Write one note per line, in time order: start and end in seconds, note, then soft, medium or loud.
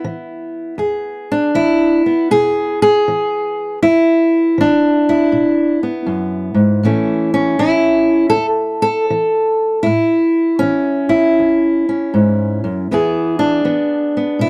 0.00 1.31 B3 soft
0.00 0.79 E4 medium
0.04 0.74 E3 medium
0.78 1.49 E2 medium
0.78 1.55 G#4 medium
1.32 2.06 D4 medium
1.55 2.25 E3 medium
1.55 2.31 E4 medium
2.06 4.58 B3 soft
2.31 3.01 B2 medium
2.31 2.80 G#4 loud
2.82 3.82 G#4 loud
3.08 3.77 E3 medium
3.83 4.53 E2 medium
3.83 5.07 E4 loud
4.58 5.28 E3 medium
4.58 5.83 D4 medium
5.09 6.85 E4 medium
5.32 6.03 B2 medium
5.83 6.84 B3 soft
6.06 6.54 F#2 medium
6.54 6.82 G#2 medium
6.83 7.54 A2 medium
6.83 7.59 E3 soft
6.83 9.85 A3 soft
6.83 7.33 C#4 soft
6.83 7.59 E4 medium
7.34 8.36 C#4 medium
7.59 8.30 E3 medium
7.59 8.29 E4 medium
8.30 8.46 A4 loud
8.37 9.07 E2 medium
8.82 9.82 A4 loud
9.10 9.81 E3 medium
9.83 10.57 A2 medium
9.83 11.08 E4 medium
10.59 11.33 E3 medium
10.59 11.86 C#4 medium
11.09 12.89 E4 medium
11.39 12.10 E2 medium
11.89 12.87 C#4 soft
12.14 12.63 G#2 medium
12.64 12.90 F#2 medium
12.91 13.62 E2 medium
12.91 13.65 E3 medium
12.91 13.64 B3 medium
12.91 13.39 E4 medium
12.91 14.41 G#4 medium
13.39 14.50 D4 medium
13.65 14.36 E3 medium
13.65 14.16 B3 soft
14.17 14.50 B3 soft
14.39 14.50 B2 medium
14.39 14.50 E4 loud